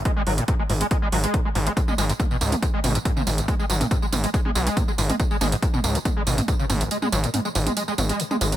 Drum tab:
HH |x-oxx-oxx-oxx-ox|x-oxx-oxx-oxx-ox|x-oxx-oxx-oxx-ox|x-oxx-oxx-oxx-ox|
TB |----------------|xxxxxxxxx-xxxxxx|xxxxxxxxx-xxxxxx|xxxxxxxxx-xxxxxx|
T2 |----------------|-o--o--o--o--o--|o--o--o--o--o--o|--o--o--o--o--o-|
BD |o---o---o---o---|o---o---o---o---|o---o---o---o---|o---o---o---o---|

HH |x-oxx-oxx-oxx-ox|
TB |xxxxxxxxxxxxxxxx|
T2 |-o--o--o--o--o--|
BD |----------------|